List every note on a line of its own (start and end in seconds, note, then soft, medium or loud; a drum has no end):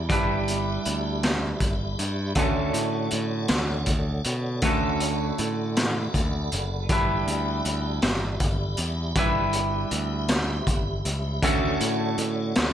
0.00 0.10 D4 medium
0.00 2.33 G4 medium
0.00 9.12 D5 medium
0.00 2.33 E5 medium
0.00 2.33 B5 soft
0.09 0.77 G1 medium
0.09 2.34 G3 medium
0.09 2.37 D4 medium
0.09 2.35 E4 medium
0.09 2.35 B4 loud
0.09 kick loud
0.09 closed hi-hat medium
0.48 closed hi-hat medium
0.85 1.53 D2 medium
0.85 closed hi-hat medium
1.23 snare loud
1.23 closed hi-hat medium
1.60 1.95 G1 medium
1.60 kick medium
1.60 closed hi-hat medium
1.99 2.33 G2 medium
1.99 closed hi-hat medium
2.35 2.70 D2 medium
2.35 4.61 D3 medium
2.35 4.61 A3 medium
2.35 4.61 C#4 medium
2.35 4.62 F#4 medium
2.35 4.62 A4 loud
2.35 6.87 F#5 medium
2.35 kick loud
2.35 closed hi-hat medium
2.40 6.87 A4 medium
2.40 4.62 C#5 medium
2.73 3.07 A2 medium
2.73 closed hi-hat medium
3.11 3.46 A2 medium
3.11 closed hi-hat medium
3.48 3.84 D2 medium
3.48 snare loud
3.48 closed hi-hat medium
3.86 4.21 D2 medium
3.86 kick medium
3.86 closed hi-hat medium
4.24 4.59 B2 medium
4.24 closed hi-hat medium
4.62 5.30 D2 medium
4.62 6.87 D3 medium
4.62 6.87 A3 medium
4.62 6.88 C#4 medium
4.62 6.88 F#4 loud
4.62 6.89 A4 loud
4.62 11.41 B5 medium
4.62 kick loud
4.62 closed hi-hat loud
5.00 closed hi-hat medium
5.38 6.06 A2 medium
5.38 closed hi-hat medium
5.76 snare loud
5.76 closed hi-hat loud
6.14 6.48 D2 medium
6.14 kick medium
6.14 closed hi-hat medium
6.52 6.86 F#1 medium
6.52 closed hi-hat medium
6.89 7.23 G1 medium
6.89 9.15 G3 medium
6.89 9.17 D4 medium
6.89 9.16 E4 medium
6.89 9.16 B4 medium
6.89 9.16 E5 medium
6.89 kick loud
6.89 closed hi-hat medium
6.93 11.41 G4 medium
7.27 7.61 D2 medium
7.27 closed hi-hat medium
7.65 7.99 D2 medium
7.65 closed hi-hat medium
8.02 8.37 G1 medium
8.02 snare loud
8.02 closed hi-hat medium
8.40 8.74 G1 medium
8.40 kick medium
8.40 closed hi-hat medium
8.77 9.12 E2 medium
8.77 closed hi-hat medium
9.15 9.84 G1 medium
9.15 11.41 G3 medium
9.15 11.43 D4 medium
9.15 11.42 E4 medium
9.15 11.42 B4 medium
9.15 11.42 E5 medium
9.15 kick loud
9.15 closed hi-hat medium
9.53 closed hi-hat medium
9.91 10.59 D2 medium
9.91 closed hi-hat medium
10.28 snare loud
10.28 closed hi-hat medium
10.67 11.01 G1 medium
10.67 kick medium
10.67 closed hi-hat medium
11.05 11.39 C#2 loud
11.05 closed hi-hat medium
11.42 11.77 D2 medium
11.42 12.73 D3 medium
11.42 12.73 A3 loud
11.42 12.73 C#4 loud
11.42 12.73 F#4 loud
11.42 12.73 A4 medium
11.42 12.73 A4 loud
11.42 12.73 C#5 medium
11.42 12.73 D5 medium
11.42 12.73 F#5 medium
11.42 kick loud
11.42 closed hi-hat loud
11.80 12.15 A2 loud
11.80 closed hi-hat medium
12.18 12.52 A2 medium
12.18 closed hi-hat medium
12.55 12.73 D2 medium
12.55 snare loud
12.55 closed hi-hat medium